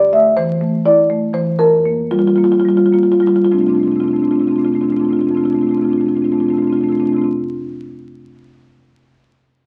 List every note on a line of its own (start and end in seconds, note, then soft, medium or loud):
0.00 1.54 F2 soft
0.00 0.10 D5 medium
0.13 0.50 A3 soft
0.13 0.35 E5 medium
0.37 0.74 E3 medium
0.37 0.82 C5 medium
0.61 0.99 A3 soft
0.85 1.24 E4 soft
0.85 1.32 D5 medium
1.10 1.49 A3 soft
1.33 1.58 E3 soft
1.33 1.57 C5 medium
1.59 3.49 F2 medium
1.59 2.08 A#4 medium
1.85 2.26 A#3 soft
2.11 2.53 G3 soft
2.11 2.19 F4 medium
2.19 2.27 F4 medium
2.27 2.36 F4 medium
2.36 2.81 A#3 soft
2.36 2.44 F4 medium
2.44 2.52 F4 medium
2.52 2.60 F4 medium
2.60 2.69 F4 medium
2.65 3.10 G3 soft
2.65 2.77 F4 medium
2.77 2.86 F4 medium
2.86 2.94 F4 medium
2.93 3.41 A#3 soft
2.93 3.03 F4 medium
3.03 3.12 F4 medium
3.12 3.20 F4 medium
3.20 3.53 G3 soft
3.20 3.27 F4 medium
3.27 3.36 F4 medium
3.36 3.45 F4 medium
3.45 3.49 F4 medium
3.51 3.62 F2 soft
3.51 3.61 C3 soft
3.51 3.61 A3 soft
3.51 3.60 C4 soft
3.51 3.61 D4 soft
3.51 3.58 F4 soft
3.58 3.73 F2 soft
3.58 3.69 C3 soft
3.58 3.69 A3 soft
3.58 3.68 C4 soft
3.58 3.70 D4 soft
3.58 3.67 F4 soft
3.67 3.78 C3 soft
3.67 3.80 A3 soft
3.67 3.77 C4 soft
3.67 3.78 D4 soft
3.67 3.75 F4 soft
3.73 3.84 F2 soft
3.73 3.85 C4 soft
3.73 3.83 F4 soft
3.78 3.87 C3 soft
3.78 3.88 A3 soft
3.78 3.87 D4 soft
3.83 3.94 F2 soft
3.83 3.97 C3 soft
3.83 3.92 C4 soft
3.83 3.92 F4 soft
3.87 3.96 A3 soft
3.87 3.96 D4 soft
3.92 4.04 F2 soft
3.92 4.00 C4 soft
3.92 4.00 F4 soft
3.96 4.05 C3 soft
3.96 4.04 A3 soft
3.96 4.03 D4 soft
4.00 4.13 F2 soft
4.00 4.08 C4 soft
4.00 4.11 D4 soft
4.00 4.08 F4 soft
4.04 4.14 C3 soft
4.04 4.14 A3 soft
4.04 4.16 F4 soft
4.08 4.16 C4 soft
4.08 4.19 D4 soft
4.13 4.23 F2 soft
4.13 4.22 C3 soft
4.13 4.23 A3 soft
4.13 4.24 C4 soft
4.13 4.24 F4 soft
4.19 4.31 F2 soft
4.19 4.32 C3 soft
4.19 4.32 A3 soft
4.19 4.27 D4 soft
4.24 4.33 C4 soft
4.24 4.36 D4 soft
4.24 4.31 F4 soft
4.31 4.42 F2 soft
4.31 4.41 C3 soft
4.31 4.40 A3 soft
4.31 4.40 C4 soft
4.31 4.40 F4 soft
4.36 4.44 D4 soft
4.36 4.47 F4 soft
4.40 4.52 F2 soft
4.40 4.50 C3 soft
4.40 4.49 A3 soft
4.40 4.48 C4 soft
4.44 4.51 D4 soft
4.44 4.56 F4 soft
4.48 4.62 F2 soft
4.48 4.59 C3 soft
4.48 4.59 A3 soft
4.48 4.56 C4 soft
4.48 4.59 D4 soft
4.56 4.67 C3 soft
4.56 4.66 A3 soft
4.56 4.64 C4 soft
4.56 4.67 D4 soft
4.56 4.65 F4 soft
4.62 4.72 F2 soft
4.62 4.73 C4 soft
4.62 4.74 F4 soft
4.66 4.76 C3 soft
4.66 4.75 A3 soft
4.66 4.76 D4 soft
4.72 4.82 F2 soft
4.72 4.83 A3 soft
4.72 4.81 C4 soft
4.72 4.81 F4 soft
4.76 4.84 C3 soft
4.76 4.84 D4 soft
4.81 4.92 F2 soft
4.81 4.93 C3 soft
4.81 4.92 A3 soft
4.81 4.88 C4 soft
4.81 4.91 D4 soft
4.81 4.90 F4 soft
4.88 5.01 F2 soft
4.88 4.97 C4 soft
4.88 5.00 D4 soft
4.88 4.97 F4 soft
4.92 5.01 C3 soft
4.92 5.01 A3 soft
4.97 5.04 C4 soft
4.97 5.09 D4 soft
4.97 5.05 F4 soft
5.01 5.11 F2 soft
5.01 5.10 C3 soft
5.01 5.10 A3 soft
5.01 5.11 C4 soft
5.05 5.17 D4 soft
5.05 5.13 F4 soft
5.10 5.21 F2 soft
5.10 5.19 C3 soft
5.10 5.19 A3 soft
5.10 5.19 C4 soft
5.10 5.21 F4 soft
5.17 5.27 C3 soft
5.17 5.28 A3 soft
5.17 5.27 C4 soft
5.17 5.25 D4 soft
5.21 5.31 F2 soft
5.21 5.29 F4 soft
5.25 5.35 C3 soft
5.25 5.37 A3 soft
5.25 5.35 C4 soft
5.25 5.34 D4 soft
5.29 5.41 F2 soft
5.29 5.37 F4 soft
5.34 5.45 C3 soft
5.34 5.46 A3 soft
5.34 5.44 C4 soft
5.34 5.43 D4 soft
5.34 5.45 F4 soft
5.41 5.51 F2 soft
5.41 5.53 C3 soft
5.41 5.51 C4 soft
5.41 5.52 D4 soft
5.45 5.55 A3 soft
5.45 5.53 F4 soft
5.51 5.62 F2 soft
5.51 5.62 C3 soft
5.51 5.59 C4 soft
5.51 5.59 D4 soft
5.51 5.61 F4 soft
5.55 5.63 A3 soft
5.55 5.67 C4 soft
5.55 5.67 D4 soft
5.61 5.72 F2 soft
5.61 5.71 C3 soft
5.61 5.71 A3 soft
5.61 5.69 F4 soft
5.67 5.74 C4 soft
5.67 5.75 D4 soft
5.67 5.77 F4 soft
5.71 5.82 F2 soft
5.71 5.82 C3 soft
5.71 5.80 A3 soft
5.71 5.82 C4 soft
5.71 5.83 D4 soft
5.77 5.89 A3 soft
5.77 5.85 F4 soft
5.82 5.92 F2 soft
5.82 5.91 C3 soft
5.82 5.90 C4 soft
5.82 5.91 D4 soft
5.82 5.93 F4 soft
5.89 6.01 F2 soft
5.89 6.00 C3 soft
5.89 5.98 A3 soft
5.89 5.98 C4 soft
5.89 6.01 D4 soft
5.93 6.01 F4 soft
5.98 6.11 F2 soft
5.98 6.08 C3 soft
5.98 6.07 A3 soft
5.98 6.06 C4 soft
5.98 6.08 D4 soft
5.98 6.09 F4 soft
6.06 6.17 C3 soft
6.06 6.16 A3 soft
6.06 6.14 C4 soft
6.06 6.17 D4 soft
6.06 6.17 F4 soft
6.11 6.21 F2 soft
6.11 6.22 C4 soft
6.16 6.26 C3 soft
6.16 6.24 A3 soft
6.16 6.25 D4 soft
6.16 6.25 F4 soft
6.21 6.32 F2 soft
6.21 6.33 A3 soft
6.21 6.30 C4 soft
6.21 6.32 F4 soft
6.25 6.35 C3 soft
6.25 6.33 D4 soft
6.30 6.43 F2 soft
6.30 6.41 A3 soft
6.30 6.38 C4 soft
6.30 6.41 D4 soft
6.30 6.40 F4 soft
6.35 6.45 C3 soft
6.35 6.47 C4 soft
6.40 6.52 F2 soft
6.40 6.50 A3 soft
6.40 6.50 D4 soft
6.40 6.49 F4 soft
6.45 6.53 C3 soft
6.45 6.54 C4 soft
6.45 6.57 F4 soft
6.50 6.62 F2 soft
6.50 6.63 C3 soft
6.50 6.58 A3 soft
6.50 6.58 D4 soft
6.54 6.67 A3 soft
6.54 6.62 C4 soft
6.54 6.65 F4 soft
6.58 6.73 F2 soft
6.58 6.70 C4 soft
6.58 6.67 D4 soft
6.63 6.72 C3 soft
6.63 6.73 F4 soft
6.67 6.76 A3 soft
6.67 6.77 C4 soft
6.67 6.75 D4 soft
6.72 6.83 F2 soft
6.72 6.81 C3 soft
6.72 6.84 A3 soft
6.72 6.83 D4 soft
6.72 6.81 F4 soft
6.77 6.89 C3 soft
6.77 6.84 C4 soft
6.81 6.92 F2 soft
6.81 6.92 A3 soft
6.81 6.92 C4 soft
6.81 6.92 D4 soft
6.81 6.89 F4 soft
6.89 7.02 F2 soft
6.89 6.98 C3 soft
6.89 7.00 A3 soft
6.89 7.00 C4 soft
6.89 7.00 D4 soft
6.89 6.98 F4 soft
6.98 7.06 C3 soft
6.98 7.09 A3 soft
6.98 7.08 C4 soft
6.98 7.08 D4 soft
6.98 7.06 F4 soft
7.02 7.13 F2 soft
7.02 7.15 C3 soft
7.02 7.13 F4 soft
7.08 7.18 A3 soft
7.08 7.16 C4 soft
7.08 7.17 D4 soft
7.13 7.28 F2 soft
7.13 7.23 C3 soft
7.13 7.24 C4 soft
7.13 7.24 D4 soft
7.13 7.22 F4 soft
7.18 7.28 A3 soft
7.18 7.28 F4 soft
7.23 7.28 C3 soft
7.23 7.28 C4 soft
7.23 7.28 D4 soft